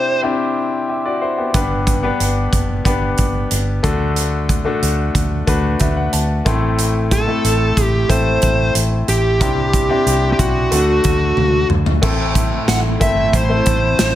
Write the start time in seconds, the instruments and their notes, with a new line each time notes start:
Already playing: grand piano C3 C4 D4 E4 G4, lead electric guitar C5
0.22 grand piano C4 D4 E4 G4
0.89 grand piano G4 E5
1.05 grand piano F#4 D5
1.22 grand piano E4 C5
1.38 grand piano B3 G4
1.54 fingered electric bass G1, grand piano G2 B3 D4 G4 B4, kick, closed hi-hat
1.87 kick, closed hi-hat
2.03 grand piano B3 D4 G4 B4
2.20 fingered electric bass G1, closed hi-hat
2.53 fingered electric bass F#1, kick, closed hi-hat
2.85 fingered electric bass G1, grand piano B3 D4 G4 B4, kick, closed hi-hat
3.18 fingered electric bass G1, kick, closed hi-hat
3.51 fingered electric bass G1, closed hi-hat
3.83 fingered electric bass D2, grand piano D3 A3 D4 F#4 A4, kick, closed hi-hat
4.16 closed hi-hat
4.49 kick, closed hi-hat
4.65 grand piano A3 D4 F#4 A4
4.82 fingered electric bass D2, closed hi-hat
5.15 fingered electric bass D2, kick, closed hi-hat
5.47 fingered electric bass D2, grand piano A3 D4 F#4 B4, kick, closed hi-hat
5.80 fingered electric bass D2, grand piano E5, kick, closed hi-hat
5.97 grand piano F#5
6.13 fingered electric bass D2, grand piano A5, closed hi-hat
6.45 fingered electric bass A1, grand piano A2 A3 C4 E4 A4 C6, kick, closed hi-hat
6.79 closed hi-hat
7.11 lead electric guitar A4, kick, closed hi-hat
7.27 grand piano A3 C4 E4 A4
7.44 fingered electric bass A1, closed hi-hat
7.77 fingered electric bass A1, kick, closed hi-hat
7.83 lead electric guitar G4
8.09 fingered electric bass A1, grand piano A3 C4 E4 A4, lead electric guitar C5, kick, closed hi-hat
8.42 fingered electric bass A1, kick, closed hi-hat
8.75 fingered electric bass A1, closed hi-hat
9.08 fingered electric bass A1, lead electric guitar G4, closed hi-hat
9.40 fingered electric bass C2, grand piano C3 C4 D4 E4 G4, kick, closed hi-hat
9.73 kick, closed hi-hat
9.89 grand piano C4 D4 E4 G4
10.06 fingered electric bass C2, closed hi-hat
10.33 lead electric guitar G4
10.39 fingered electric bass B1, lead electric guitar F#4, kick, closed hi-hat
10.71 fingered electric bass D2, grand piano D3 A3 D4 F#4 A4, closed hi-hat
11.04 fingered electric bass D2, kick, closed hi-hat
11.37 fingered electric bass D2, high tom
11.70 fingered electric bass D2, mid tom
11.86 floor tom
12.02 fingered electric bass A1, grand piano A2 A3 C4 E4 A4, string section E3 A3 C4 E4, kick, crash
12.35 kick, closed hi-hat
12.68 fingered electric bass A1, lead electric guitar F#5, snare, closed hi-hat
13.00 fingered electric bass G1, grand piano A3 C4 E4 A4, lead electric guitar E5, kick, closed hi-hat
13.33 fingered electric bass A1, lead electric guitar C5, kick, closed hi-hat
13.49 grand piano A3 C4 E4 A4
13.66 fingered electric bass A1, kick, closed hi-hat
13.99 fingered electric bass A1, snare, closed hi-hat